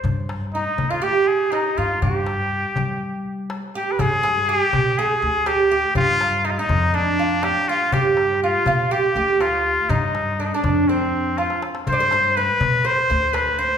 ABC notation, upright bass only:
X:1
M:4/4
L:1/8
Q:1/4=122
K:none
V:1 name="Upright bass" clef=bass
G,,3 D,, z3 G,, | G,,3 G,4 z | G,,3 B,, z D,,3 | G,,3 F,,4 z |
G,,3 B,, z D,,3 | G,,3 F,,4 z | G,,3 B,, z D,,3 |]